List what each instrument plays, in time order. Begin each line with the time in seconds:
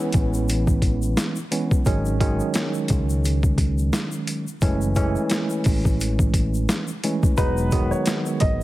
Already playing: tine electric piano E3 G#3 B3 C#4
0.12 fingered electric bass A1, kick, closed hi-hat, shaker
0.34 shaker
0.49 closed hi-hat, shaker
0.67 kick, shaker
0.82 kick, closed hi-hat
1.02 shaker
1.17 snare, closed hi-hat, shaker
1.36 shaker
1.51 tine electric piano E3 G#3 B3 C#4, closed hi-hat, shaker
1.71 kick, shaker
1.86 fingered electric bass G#1, tine electric piano D#3 F#3 G#3 C#4, kick, closed hi-hat, shaker
2.06 shaker
2.20 tine electric piano D#3 F#3 G#3 C#4, kick, closed hi-hat
2.40 shaker
2.54 snare, closed hi-hat, shaker
2.74 shaker
2.88 fingered electric bass C#2, kick, closed hi-hat, shaker
3.10 shaker
3.25 closed hi-hat, shaker
3.43 kick, shaker
3.58 kick, closed hi-hat
3.78 shaker
3.93 snare, closed hi-hat, shaker
4.12 shaker
4.27 closed hi-hat, shaker
4.47 shaker
4.61 fingered electric bass F#1, tine electric piano E3 G#3 A3 C#4, kick, closed hi-hat, shaker
4.81 shaker
4.95 tine electric piano E3 G#3 A3 C#4, kick, closed hi-hat, shaker
5.16 shaker
5.30 snare, closed hi-hat, shaker
5.50 shaker
5.64 fingered electric bass A1, kick, open hi-hat, shaker
5.85 kick, shaker
6.01 closed hi-hat, shaker
6.19 kick, shaker
6.34 kick, closed hi-hat, shaker
6.54 shaker
6.69 snare, closed hi-hat, shaker
6.88 shaker
7.04 tine electric piano E3 G#3 A3 C#4, closed hi-hat, shaker
7.23 kick, shaker
7.37 fingered electric bass E1, tine electric piano F#3 G#3 B3 D#4, upright piano B4, kick, closed hi-hat, shaker
7.57 shaker
7.71 tine electric piano D#3 F#3 G#3 B3, kick, closed hi-hat, shaker
7.91 upright piano C#5, shaker
8.06 snare, closed hi-hat, shaker
8.26 shaker
8.40 fingered electric bass G#1, upright piano D#5, kick, closed hi-hat